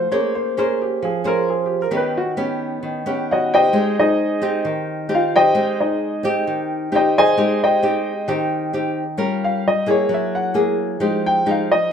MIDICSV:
0, 0, Header, 1, 3, 480
1, 0, Start_track
1, 0, Key_signature, -4, "major"
1, 0, Tempo, 453858
1, 113, Time_signature, 4, 2, 24, 8
1, 12612, End_track
2, 0, Start_track
2, 0, Title_t, "Grand piano"
2, 0, Program_c, 0, 0
2, 0, Note_on_c, 0, 72, 86
2, 111, Note_off_c, 0, 72, 0
2, 122, Note_on_c, 0, 73, 87
2, 350, Note_off_c, 0, 73, 0
2, 372, Note_on_c, 0, 72, 77
2, 596, Note_off_c, 0, 72, 0
2, 623, Note_on_c, 0, 70, 67
2, 841, Note_off_c, 0, 70, 0
2, 864, Note_on_c, 0, 67, 72
2, 1082, Note_off_c, 0, 67, 0
2, 1108, Note_on_c, 0, 68, 66
2, 1324, Note_off_c, 0, 68, 0
2, 1346, Note_on_c, 0, 70, 87
2, 1563, Note_off_c, 0, 70, 0
2, 1587, Note_on_c, 0, 68, 67
2, 1725, Note_off_c, 0, 68, 0
2, 1754, Note_on_c, 0, 67, 70
2, 1889, Note_off_c, 0, 67, 0
2, 1925, Note_on_c, 0, 70, 70
2, 2054, Note_off_c, 0, 70, 0
2, 2083, Note_on_c, 0, 71, 78
2, 2291, Note_off_c, 0, 71, 0
2, 2300, Note_on_c, 0, 66, 82
2, 2436, Note_off_c, 0, 66, 0
2, 3504, Note_on_c, 0, 78, 75
2, 3515, Note_on_c, 0, 73, 65
2, 3515, Note_on_c, 0, 75, 60
2, 3517, Note_on_c, 0, 66, 66
2, 3721, Note_off_c, 0, 78, 0
2, 3726, Note_off_c, 0, 73, 0
2, 3727, Note_off_c, 0, 66, 0
2, 3727, Note_off_c, 0, 75, 0
2, 3741, Note_on_c, 0, 79, 100
2, 3747, Note_on_c, 0, 67, 78
2, 3749, Note_on_c, 0, 72, 75
2, 3750, Note_on_c, 0, 75, 80
2, 4173, Note_off_c, 0, 79, 0
2, 4177, Note_off_c, 0, 67, 0
2, 4178, Note_off_c, 0, 72, 0
2, 4178, Note_off_c, 0, 75, 0
2, 4225, Note_on_c, 0, 75, 80
2, 4228, Note_on_c, 0, 63, 68
2, 4229, Note_on_c, 0, 68, 66
2, 4230, Note_on_c, 0, 72, 61
2, 4886, Note_off_c, 0, 75, 0
2, 4887, Note_off_c, 0, 63, 0
2, 4888, Note_off_c, 0, 68, 0
2, 4888, Note_off_c, 0, 72, 0
2, 5443, Note_on_c, 0, 77, 76
2, 5445, Note_on_c, 0, 65, 68
2, 5650, Note_off_c, 0, 77, 0
2, 5651, Note_off_c, 0, 65, 0
2, 5665, Note_on_c, 0, 79, 103
2, 5669, Note_on_c, 0, 67, 81
2, 5671, Note_on_c, 0, 75, 82
2, 5676, Note_on_c, 0, 72, 80
2, 6095, Note_off_c, 0, 79, 0
2, 6097, Note_off_c, 0, 67, 0
2, 6099, Note_off_c, 0, 75, 0
2, 6101, Note_off_c, 0, 72, 0
2, 6140, Note_on_c, 0, 72, 47
2, 6140, Note_on_c, 0, 75, 57
2, 6146, Note_on_c, 0, 63, 53
2, 6150, Note_on_c, 0, 68, 46
2, 6803, Note_off_c, 0, 72, 0
2, 6803, Note_off_c, 0, 75, 0
2, 6806, Note_off_c, 0, 63, 0
2, 6808, Note_off_c, 0, 68, 0
2, 7353, Note_on_c, 0, 72, 67
2, 7353, Note_on_c, 0, 79, 83
2, 7355, Note_on_c, 0, 67, 70
2, 7361, Note_on_c, 0, 75, 64
2, 7565, Note_off_c, 0, 72, 0
2, 7565, Note_off_c, 0, 79, 0
2, 7566, Note_off_c, 0, 67, 0
2, 7569, Note_off_c, 0, 75, 0
2, 7596, Note_on_c, 0, 75, 81
2, 7597, Note_on_c, 0, 80, 110
2, 7599, Note_on_c, 0, 72, 86
2, 7600, Note_on_c, 0, 68, 81
2, 8021, Note_off_c, 0, 75, 0
2, 8022, Note_off_c, 0, 80, 0
2, 8023, Note_off_c, 0, 68, 0
2, 8023, Note_off_c, 0, 72, 0
2, 8075, Note_on_c, 0, 72, 67
2, 8075, Note_on_c, 0, 75, 67
2, 8076, Note_on_c, 0, 67, 61
2, 8078, Note_on_c, 0, 79, 80
2, 8731, Note_off_c, 0, 72, 0
2, 8731, Note_off_c, 0, 75, 0
2, 8732, Note_off_c, 0, 67, 0
2, 8732, Note_off_c, 0, 79, 0
2, 9988, Note_on_c, 0, 77, 83
2, 10204, Note_off_c, 0, 77, 0
2, 10233, Note_on_c, 0, 75, 74
2, 10447, Note_off_c, 0, 75, 0
2, 10475, Note_on_c, 0, 73, 92
2, 10688, Note_off_c, 0, 73, 0
2, 10726, Note_on_c, 0, 76, 63
2, 10933, Note_off_c, 0, 76, 0
2, 10947, Note_on_c, 0, 78, 75
2, 11164, Note_off_c, 0, 78, 0
2, 11914, Note_on_c, 0, 79, 96
2, 12128, Note_off_c, 0, 79, 0
2, 12169, Note_on_c, 0, 77, 74
2, 12376, Note_off_c, 0, 77, 0
2, 12390, Note_on_c, 0, 75, 86
2, 12607, Note_off_c, 0, 75, 0
2, 12612, End_track
3, 0, Start_track
3, 0, Title_t, "Nylon-string guitar"
3, 0, Program_c, 1, 24
3, 122, Note_on_c, 1, 58, 59
3, 126, Note_on_c, 1, 61, 50
3, 126, Note_on_c, 1, 68, 49
3, 129, Note_on_c, 1, 72, 59
3, 558, Note_off_c, 1, 61, 0
3, 561, Note_off_c, 1, 68, 0
3, 562, Note_off_c, 1, 72, 0
3, 606, Note_on_c, 1, 61, 51
3, 612, Note_on_c, 1, 68, 55
3, 620, Note_on_c, 1, 72, 62
3, 1054, Note_off_c, 1, 58, 0
3, 1084, Note_on_c, 1, 53, 69
3, 1281, Note_off_c, 1, 61, 0
3, 1284, Note_off_c, 1, 68, 0
3, 1285, Note_off_c, 1, 72, 0
3, 1313, Note_on_c, 1, 61, 56
3, 1321, Note_on_c, 1, 68, 49
3, 1325, Note_on_c, 1, 72, 64
3, 1995, Note_off_c, 1, 61, 0
3, 1996, Note_off_c, 1, 68, 0
3, 2000, Note_off_c, 1, 72, 0
3, 2014, Note_off_c, 1, 53, 0
3, 2019, Note_on_c, 1, 51, 62
3, 2022, Note_on_c, 1, 59, 47
3, 2024, Note_on_c, 1, 61, 52
3, 2028, Note_on_c, 1, 67, 62
3, 2335, Note_off_c, 1, 59, 0
3, 2337, Note_off_c, 1, 61, 0
3, 2339, Note_off_c, 1, 67, 0
3, 2506, Note_on_c, 1, 59, 55
3, 2513, Note_on_c, 1, 61, 48
3, 2516, Note_on_c, 1, 67, 58
3, 2962, Note_off_c, 1, 51, 0
3, 2989, Note_on_c, 1, 51, 62
3, 3191, Note_off_c, 1, 59, 0
3, 3192, Note_off_c, 1, 61, 0
3, 3195, Note_off_c, 1, 67, 0
3, 3235, Note_on_c, 1, 59, 57
3, 3242, Note_on_c, 1, 61, 58
3, 3246, Note_on_c, 1, 67, 65
3, 3915, Note_off_c, 1, 59, 0
3, 3918, Note_off_c, 1, 61, 0
3, 3920, Note_off_c, 1, 67, 0
3, 3926, Note_off_c, 1, 51, 0
3, 3944, Note_on_c, 1, 56, 72
3, 3950, Note_on_c, 1, 60, 53
3, 3953, Note_on_c, 1, 63, 54
3, 4631, Note_off_c, 1, 60, 0
3, 4633, Note_off_c, 1, 63, 0
3, 4670, Note_on_c, 1, 60, 58
3, 4677, Note_on_c, 1, 63, 65
3, 4682, Note_on_c, 1, 67, 64
3, 4884, Note_off_c, 1, 56, 0
3, 4915, Note_on_c, 1, 51, 67
3, 5352, Note_off_c, 1, 60, 0
3, 5356, Note_off_c, 1, 63, 0
3, 5356, Note_off_c, 1, 67, 0
3, 5381, Note_on_c, 1, 60, 50
3, 5382, Note_on_c, 1, 63, 51
3, 5387, Note_on_c, 1, 67, 57
3, 5695, Note_off_c, 1, 60, 0
3, 5695, Note_off_c, 1, 63, 0
3, 5698, Note_off_c, 1, 67, 0
3, 5849, Note_off_c, 1, 51, 0
3, 5867, Note_on_c, 1, 56, 67
3, 5867, Note_on_c, 1, 60, 53
3, 5874, Note_on_c, 1, 63, 54
3, 6550, Note_off_c, 1, 60, 0
3, 6554, Note_off_c, 1, 63, 0
3, 6591, Note_on_c, 1, 60, 59
3, 6603, Note_on_c, 1, 63, 60
3, 6609, Note_on_c, 1, 67, 74
3, 6805, Note_off_c, 1, 56, 0
3, 6846, Note_on_c, 1, 51, 65
3, 7272, Note_off_c, 1, 60, 0
3, 7279, Note_off_c, 1, 63, 0
3, 7280, Note_off_c, 1, 67, 0
3, 7316, Note_on_c, 1, 60, 54
3, 7321, Note_on_c, 1, 63, 44
3, 7321, Note_on_c, 1, 67, 60
3, 7755, Note_off_c, 1, 60, 0
3, 7757, Note_off_c, 1, 63, 0
3, 7758, Note_off_c, 1, 67, 0
3, 7774, Note_off_c, 1, 51, 0
3, 7799, Note_on_c, 1, 56, 65
3, 7800, Note_on_c, 1, 60, 50
3, 7803, Note_on_c, 1, 63, 53
3, 7809, Note_on_c, 1, 67, 52
3, 8236, Note_off_c, 1, 60, 0
3, 8240, Note_off_c, 1, 63, 0
3, 8240, Note_off_c, 1, 67, 0
3, 8276, Note_on_c, 1, 60, 52
3, 8283, Note_on_c, 1, 63, 56
3, 8285, Note_on_c, 1, 67, 59
3, 8583, Note_off_c, 1, 60, 0
3, 8585, Note_off_c, 1, 63, 0
3, 8587, Note_off_c, 1, 67, 0
3, 8732, Note_off_c, 1, 56, 0
3, 8754, Note_on_c, 1, 51, 67
3, 8760, Note_on_c, 1, 60, 54
3, 8763, Note_on_c, 1, 67, 64
3, 8764, Note_on_c, 1, 63, 53
3, 9197, Note_off_c, 1, 60, 0
3, 9198, Note_off_c, 1, 67, 0
3, 9200, Note_off_c, 1, 63, 0
3, 9237, Note_on_c, 1, 60, 49
3, 9242, Note_on_c, 1, 63, 51
3, 9245, Note_on_c, 1, 67, 52
3, 9544, Note_off_c, 1, 60, 0
3, 9545, Note_off_c, 1, 63, 0
3, 9548, Note_off_c, 1, 67, 0
3, 9690, Note_off_c, 1, 51, 0
3, 9703, Note_on_c, 1, 61, 55
3, 9707, Note_on_c, 1, 55, 65
3, 9708, Note_on_c, 1, 65, 54
3, 9714, Note_on_c, 1, 70, 60
3, 10185, Note_off_c, 1, 61, 0
3, 10188, Note_off_c, 1, 65, 0
3, 10190, Note_off_c, 1, 70, 0
3, 10431, Note_on_c, 1, 58, 59
3, 10439, Note_on_c, 1, 64, 57
3, 10448, Note_on_c, 1, 68, 59
3, 10647, Note_off_c, 1, 55, 0
3, 10672, Note_on_c, 1, 54, 70
3, 11115, Note_off_c, 1, 58, 0
3, 11120, Note_off_c, 1, 64, 0
3, 11121, Note_off_c, 1, 68, 0
3, 11149, Note_on_c, 1, 58, 53
3, 11154, Note_on_c, 1, 64, 44
3, 11158, Note_on_c, 1, 68, 56
3, 11610, Note_off_c, 1, 54, 0
3, 11614, Note_off_c, 1, 58, 0
3, 11615, Note_off_c, 1, 64, 0
3, 11618, Note_off_c, 1, 68, 0
3, 11635, Note_on_c, 1, 53, 63
3, 11636, Note_on_c, 1, 56, 61
3, 11641, Note_on_c, 1, 63, 51
3, 11645, Note_on_c, 1, 67, 54
3, 12078, Note_off_c, 1, 56, 0
3, 12079, Note_off_c, 1, 63, 0
3, 12082, Note_off_c, 1, 67, 0
3, 12120, Note_on_c, 1, 56, 50
3, 12126, Note_on_c, 1, 63, 57
3, 12127, Note_on_c, 1, 67, 57
3, 12428, Note_off_c, 1, 56, 0
3, 12429, Note_off_c, 1, 63, 0
3, 12431, Note_off_c, 1, 67, 0
3, 12573, Note_off_c, 1, 53, 0
3, 12612, End_track
0, 0, End_of_file